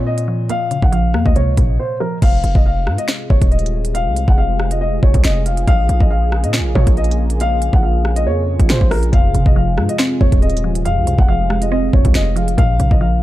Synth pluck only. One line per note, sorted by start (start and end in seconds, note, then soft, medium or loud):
0.00 0.48 A#2 medium
0.00 0.27 F3 medium
0.00 0.49 A#3 medium
0.00 0.71 C4 loud
0.28 0.91 F3 medium
0.50 1.57 A#2 loud
0.71 1.79 C#3 medium
0.92 2.00 F3 medium
1.14 2.22 A#3 medium
1.36 2.22 C3 loud
1.58 2.22 A#2 medium
2.01 2.22 F3 medium
9.12 10.19 F2 loud
9.35 10.42 C3 medium
9.56 10.63 F3 medium
9.78 10.86 G#3 medium
9.99 11.07 C4 loud
10.21 10.84 F2 medium
10.64 11.27 F3 medium
10.86 11.92 F2 medium
11.07 12.15 C3 medium
11.28 12.35 F3 medium
11.50 12.58 G#3 medium
11.72 12.58 C4 loud
11.94 12.58 F2 medium
12.36 12.58 F3 medium
12.58 13.23 A#2 loud
12.80 13.23 C#3 medium
13.01 13.23 F3 medium